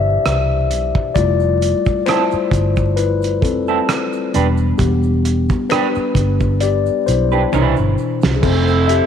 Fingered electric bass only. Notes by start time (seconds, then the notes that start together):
Already playing: G1
0.26 C2
0.72 B1
1.16 F1
1.87 muted fingered electric bass stroke
2.33 muted fingered electric bass stroke
2.52 G1
3.43 F1
4.36 E1
4.80 E1
5.96 muted fingered electric bass stroke
6.16 G1
7.08 B1
7.54 C2
7.78 G1
8.24 C2
8.44 F1